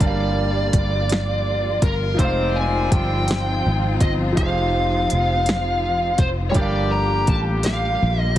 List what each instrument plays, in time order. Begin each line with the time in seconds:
Already playing: string section F3 G3 A#3 F4, grand piano G3
0.00 fingered electric bass G1, grand piano D4 A#4 A5, lead electric guitar D5, kick, closed hi-hat
0.06 grand piano F5
0.73 fingered electric bass G1, kick, closed hi-hat
1.09 snare, closed hi-hat
1.82 fingered electric bass G1, lead electric guitar A#4, kick, closed hi-hat
2.14 grand piano F3 D#4
2.19 fingered electric bass F1, horn section D#3 G3 C4, grand piano G#3 F4, string section C4 D#4, lead electric guitar C5, kick, closed hi-hat
2.24 grand piano F5
2.56 lead electric guitar G#5
2.92 fingered electric bass G1, lead electric guitar G5, kick, closed hi-hat
3.28 snare, closed hi-hat
3.66 fingered electric bass G#1
4.01 fingered electric bass G1, lead electric guitar D#5, kick, closed hi-hat
4.32 grand piano F3 D#4
4.37 fingered electric bass F1, grand piano G4 G#4, lead electric guitar F5, kick, closed hi-hat
4.43 grand piano C5
5.10 fingered electric bass F1, closed hi-hat
5.46 snare, closed hi-hat
6.18 fingered electric bass F1, lead electric guitar C5, kick, closed hi-hat
6.50 grand piano G3, lead electric guitar C#5
6.54 fingered electric bass G1, horn section D3 A#3 G4, string section G3 A#3, grand piano D4 G4, lead electric guitar D5, kick, closed hi-hat
6.59 grand piano A#4 F5
6.92 lead electric guitar A#5
7.27 fingered electric bass A1, lead electric guitar A5, kick, closed hi-hat
7.63 lead electric guitar F5, snare, closed hi-hat
8.02 fingered electric bass A#1
8.20 lead electric guitar D#5